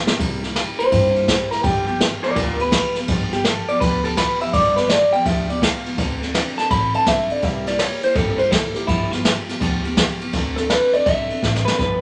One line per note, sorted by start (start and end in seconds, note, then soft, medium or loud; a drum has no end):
0.05 0.18 F3 soft
0.05 0.19 B3 medium
0.05 0.19 F4 medium
0.05 0.19 G4 medium
0.05 muted upright bass stroke medium
0.05 snare loud
0.18 0.61 C2 medium
0.18 0.42 C3 medium
0.18 0.42 G3 medium
0.18 0.43 A#3 medium
0.18 0.42 E4 medium
0.18 0.40 G4 medium
0.18 kick loud
0.18 snare soft
0.18 ride medium
0.41 0.54 A#3 medium
0.41 0.55 E4 medium
0.41 0.55 G4 medium
0.41 snare soft
0.41 ride medium
0.53 0.78 G3 medium
0.53 0.79 A#3 medium
0.53 0.78 E4 medium
0.53 0.76 G4 medium
0.53 snare loud
0.53 ride medium
0.78 0.90 A#3 soft
0.78 0.91 E4 medium
0.78 0.91 G4 medium
0.78 1.49 C5 loud
0.78 muted upright bass stroke medium
0.78 ride medium
0.90 1.34 G2 medium
0.90 1.14 C3 medium
0.90 1.15 G3 medium
0.90 1.15 A#3 medium
0.90 1.15 E4 medium
0.90 1.13 G4 medium
0.90 kick loud
0.90 ride medium
1.14 1.27 A#3 soft
1.14 1.28 E4 soft
1.14 1.27 G4 medium
1.14 ride medium
1.27 1.51 G3 medium
1.27 1.52 A#3 medium
1.27 1.51 E4 medium
1.27 1.49 G4 medium
1.27 kick medium
1.27 snare loud
1.27 ride medium
1.50 1.64 A#3 soft
1.50 1.64 E4 medium
1.50 1.64 G4 medium
1.50 1.63 A#4 loud
1.50 muted upright bass stroke medium
1.50 snare soft
1.50 ride medium
1.63 2.06 G1 medium
1.63 1.87 G2 medium
1.63 1.87 D3 medium
1.63 1.88 F3 medium
1.63 1.87 B3 medium
1.63 1.86 F4 medium
1.63 1.86 G4 medium
1.63 1.85 G4 medium
1.63 kick loud
1.63 ride medium
1.86 1.98 F3 soft
1.86 1.99 B3 soft
1.86 2.00 F4 medium
1.86 2.00 G4 medium
1.86 2.00 G4 loud
1.86 ride medium
1.99 2.23 F3 medium
1.99 2.24 B3 medium
1.99 2.23 F4 medium
1.99 2.21 G4 medium
1.99 snare loud
1.99 ride medium
2.23 2.36 F3 soft
2.23 2.36 B3 medium
2.23 2.36 F4 medium
2.23 2.36 G4 medium
2.23 2.35 A#4 medium
2.23 2.36 D5 loud
2.23 muted upright bass stroke medium
2.23 ride medium
2.35 2.78 D2 medium
2.35 2.59 G2 medium
2.35 2.60 D3 medium
2.35 2.60 F3 medium
2.35 2.60 B3 medium
2.35 2.57 F4 medium
2.35 2.59 F4 medium
2.35 2.58 G4 medium
2.35 2.59 A#4 loud
2.35 kick loud
2.35 ride medium
2.59 2.70 F3 soft
2.59 2.72 B3 soft
2.59 2.73 F4 soft
2.59 2.72 G4 medium
2.59 2.96 B4 medium
2.59 ride medium
2.71 2.95 F3 medium
2.71 2.96 B3 medium
2.71 2.96 F4 medium
2.71 2.95 G4 medium
2.71 kick medium
2.71 snare loud
2.71 ride loud
2.95 3.07 F3 soft
2.95 3.08 B3 soft
2.95 3.09 F4 soft
2.95 3.09 G4 medium
2.95 muted upright bass stroke medium
2.95 snare soft
2.95 ride medium
3.07 3.50 G1 medium
3.07 3.32 G2 medium
3.07 3.32 D3 medium
3.07 3.32 F3 medium
3.07 3.32 B3 medium
3.07 3.31 F4 medium
3.07 3.30 G4 loud
3.07 kick loud
3.07 snare soft
3.07 ride medium
3.31 3.43 F3 soft
3.31 3.44 B3 soft
3.31 3.45 F4 medium
3.31 3.44 G4 medium
3.31 3.46 G4 loud
3.31 snare soft
3.31 ride medium
3.44 3.68 F3 medium
3.44 3.69 B3 medium
3.44 3.68 F4 medium
3.44 3.67 G4 medium
3.44 3.68 A4 loud
3.44 snare loud
3.44 ride medium
3.68 3.81 F3 medium
3.68 3.81 B3 medium
3.68 3.82 F4 soft
3.68 3.81 G4 medium
3.68 3.80 D5 loud
3.68 muted upright bass stroke medium
3.68 ride medium
3.80 4.23 D2 medium
3.80 4.05 G2 medium
3.80 4.05 D3 medium
3.80 4.05 F3 medium
3.80 4.04 B3 medium
3.80 4.03 F4 medium
3.80 4.02 G4 medium
3.80 4.03 B4 medium
3.80 kick loud
3.80 ride medium
4.03 4.15 F3 soft
4.03 4.16 B3 soft
4.03 4.17 F4 soft
4.03 4.17 G4 medium
4.03 4.17 A4 medium
4.03 ride medium
4.16 4.40 F3 medium
4.16 4.41 B3 medium
4.16 4.40 F4 medium
4.16 4.38 G4 medium
4.16 4.40 B4 medium
4.16 kick medium
4.16 snare loud
4.16 ride loud
4.40 4.52 F3 soft
4.40 4.52 B3 soft
4.40 4.53 F4 medium
4.40 4.53 G4 medium
4.40 4.53 E5 loud
4.40 muted upright bass stroke medium
4.40 ride medium
4.52 4.95 G1 medium
4.52 4.76 G2 medium
4.52 4.77 D3 medium
4.52 4.77 F3 medium
4.52 4.77 B3 medium
4.52 4.76 F4 medium
4.52 4.74 G4 medium
4.52 4.76 D5 medium
4.52 kick loud
4.52 snare soft
4.52 ride medium
4.76 4.87 F3 soft
4.76 4.88 B3 medium
4.76 4.89 F4 medium
4.76 4.89 G4 medium
4.76 4.89 B4 loud
4.76 snare soft
4.76 ride medium
4.88 5.12 F3 medium
4.88 5.13 B3 medium
4.88 5.12 F4 medium
4.88 5.10 G4 medium
4.88 5.12 D5 medium
4.88 snare loud
4.88 ride medium
5.11 5.24 F3 soft
5.11 5.25 B3 soft
5.11 5.25 F4 medium
5.11 5.25 G4 medium
5.11 5.26 G5 loud
5.11 muted upright bass stroke medium
5.11 ride medium
5.24 5.68 D2 medium
5.24 5.48 G2 medium
5.24 5.49 D3 medium
5.24 5.49 F3 medium
5.24 5.49 B3 medium
5.24 5.48 F4 medium
5.24 5.47 G4 medium
5.24 5.49 E5 loud
5.24 kick loud
5.24 ride medium
5.48 5.59 F3 medium
5.48 5.60 B3 soft
5.48 5.61 F4 medium
5.48 5.61 G4 medium
5.48 5.62 D5 medium
5.48 ride medium
5.60 5.85 F3 medium
5.60 5.85 B3 medium
5.60 5.85 F4 medium
5.60 5.83 G4 medium
5.60 5.97 F5 medium
5.60 kick medium
5.60 snare loud
5.60 ride loud
5.84 5.97 F3 soft
5.84 5.98 B3 medium
5.84 5.98 F4 soft
5.84 5.98 G4 medium
5.84 muted upright bass stroke medium
5.84 ride medium
5.96 6.40 D2 medium
5.96 6.21 D3 medium
5.96 6.21 F#3 medium
5.96 6.22 C4 medium
5.96 6.21 D4 medium
5.96 6.19 A4 medium
5.96 kick loud
5.96 snare soft
5.96 ride medium
6.20 6.33 C4 medium
6.20 6.34 D4 medium
6.20 6.34 A4 medium
6.20 snare soft
6.20 ride medium
6.33 6.57 F#3 medium
6.33 6.58 C4 medium
6.33 6.57 D4 medium
6.33 6.55 A4 medium
6.33 snare loud
6.33 ride loud
6.57 6.70 C4 soft
6.57 6.70 D4 medium
6.57 6.70 A4 medium
6.57 6.70 A5 loud
6.57 muted upright bass stroke medium
6.57 snare soft
6.57 ride medium
6.70 6.91 A1 medium
6.70 6.94 D3 medium
6.70 6.94 F#3 medium
6.70 6.94 C4 medium
6.70 6.94 D4 medium
6.70 6.92 A4 medium
6.70 6.93 B5 loud
6.70 kick loud
6.70 ride loud
6.93 7.06 C4 soft
6.93 7.07 D4 medium
6.93 7.06 A4 medium
6.93 7.07 A5 loud
6.93 muted upright bass stroke medium
6.93 ride medium
7.06 7.27 B1 medium
7.06 7.30 F#3 medium
7.06 7.31 C4 medium
7.06 7.31 D4 medium
7.06 7.29 A4 medium
7.06 7.32 E5 loud
7.06 kick medium
7.06 snare loud
7.06 ride loud
7.30 7.43 C4 soft
7.30 7.44 D4 medium
7.30 7.43 A4 medium
7.30 7.44 D5 medium
7.30 muted upright bass stroke medium
7.30 ride medium
7.42 7.85 C2 medium
7.42 7.66 C3 medium
7.42 7.67 G3 medium
7.42 7.67 A#3 medium
7.42 7.67 E4 medium
7.42 7.65 G4 medium
7.42 7.66 E5 medium
7.42 kick loud
7.42 snare soft
7.42 ride medium
7.66 7.78 A#3 medium
7.66 7.80 E4 medium
7.66 7.79 G4 medium
7.66 7.80 D5 loud
7.66 snare soft
7.66 ride medium
7.78 8.02 G3 medium
7.78 8.03 A#3 medium
7.78 8.03 E4 medium
7.78 8.01 G4 medium
7.78 8.02 C#5 loud
7.78 snare loud
7.78 ride medium
8.02 8.16 A#3 soft
8.02 8.16 E4 medium
8.02 8.15 G4 medium
8.02 8.16 C5 loud
8.02 muted upright bass stroke medium
8.02 ride medium
8.15 8.57 G1 medium
8.15 8.39 C3 medium
8.15 8.40 G3 medium
8.15 8.40 A#3 medium
8.15 8.39 E4 medium
8.15 8.38 G4 loud
8.15 8.38 A4 loud
8.15 kick loud
8.15 ride medium
8.38 8.51 A#3 soft
8.38 8.53 E4 medium
8.38 8.52 G4 medium
8.38 8.51 C5 medium
8.38 ride medium
8.51 8.75 G3 medium
8.51 8.76 A#3 medium
8.51 8.75 E4 medium
8.51 8.73 G4 medium
8.51 8.74 A4 medium
8.51 kick medium
8.51 snare loud
8.51 ride medium
8.74 8.88 A#3 soft
8.74 8.88 E4 medium
8.74 8.88 G4 medium
8.74 8.87 G4 loud
8.74 muted upright bass stroke medium
8.74 snare soft
8.74 ride medium
8.87 9.30 G1 medium
8.87 9.11 G2 medium
8.87 9.11 D3 medium
8.87 9.11 F3 medium
8.87 9.12 B3 medium
8.87 9.10 E4 loud
8.87 9.11 F4 medium
8.87 9.09 G4 medium
8.87 kick loud
8.87 snare soft
8.87 ride medium
9.11 9.22 F3 soft
9.11 9.24 B3 medium
9.11 9.82 F4 loud
9.11 9.25 F4 medium
9.11 9.24 G4 medium
9.11 snare soft
9.11 ride medium
9.23 9.47 F3 medium
9.23 9.48 B3 medium
9.23 9.47 F4 medium
9.23 9.46 G4 medium
9.23 snare loud
9.23 ride medium
9.47 9.59 F3 soft
9.47 9.60 B3 medium
9.47 9.60 F4 medium
9.47 9.60 G4 medium
9.47 muted upright bass stroke medium
9.47 snare soft
9.47 ride medium
9.60 10.03 D2 medium
9.60 9.84 G2 loud
9.60 9.84 D3 loud
9.60 9.84 F3 loud
9.60 9.85 B3 loud
9.60 9.83 F4 loud
9.60 9.82 G4 loud
9.60 kick loud
9.60 ride medium
9.83 9.94 F3 medium
9.83 9.95 B3 medium
9.83 9.97 F4 medium
9.83 9.96 G4 medium
9.83 ride medium
9.95 10.20 F3 medium
9.95 10.20 B3 medium
9.95 10.19 F4 medium
9.95 10.18 G4 medium
9.95 kick medium
9.95 snare loud
9.95 ride loud
10.19 10.34 F3 medium
10.19 10.34 B3 soft
10.19 10.33 F4 medium
10.19 10.33 G4 medium
10.19 muted upright bass stroke medium
10.19 ride medium
10.33 10.75 D2 medium
10.33 10.57 D3 medium
10.33 10.57 F#3 medium
10.33 10.57 C4 medium
10.33 10.57 D4 loud
10.33 10.55 A4 loud
10.33 kick loud
10.33 snare soft
10.33 ride medium
10.56 10.69 C4 soft
10.56 10.70 D4 medium
10.56 10.69 A4 medium
10.56 10.69 A4 loud
10.56 snare soft
10.56 ride medium
10.69 10.93 F#3 medium
10.69 10.94 C4 medium
10.69 10.93 D4 medium
10.69 10.91 A4 medium
10.69 10.93 B4 loud
10.69 snare loud
10.69 ride medium
10.92 11.05 C4 soft
10.92 11.07 D4 medium
10.92 11.05 A4 medium
10.92 11.06 D5 loud
10.92 muted upright bass stroke medium
10.92 ride medium
11.06 11.26 B1 medium
11.06 11.29 D3 medium
11.06 11.30 F#3 medium
11.06 11.30 C4 medium
11.06 11.29 D4 medium
11.06 11.28 A4 loud
11.06 11.64 E5 loud
11.06 kick loud
11.06 ride medium
11.29 11.41 C4 soft
11.29 11.42 D4 medium
11.29 11.42 A4 medium
11.29 muted upright bass stroke medium
11.29 ride medium
11.41 11.63 A1 medium
11.41 11.65 F#3 medium
11.41 11.66 C4 medium
11.41 11.65 D4 medium
11.41 11.64 A4 medium
11.41 kick medium
11.41 snare medium
11.56 snare medium
11.65 11.80 C4 soft
11.65 11.79 D4 soft
11.65 11.78 A4 medium
11.65 11.78 B4 loud
11.65 muted upright bass stroke medium
11.65 snare loud
11.78 12.01 G1 medium
11.78 12.01 G2 medium
11.78 12.01 D3 medium
11.78 12.01 F3 medium
11.78 12.01 B3 medium
11.78 12.01 F4 medium
11.78 11.99 G4 medium
11.78 12.01 B4 loud
11.78 kick loud
11.78 snare soft
11.78 closed hi-hat medium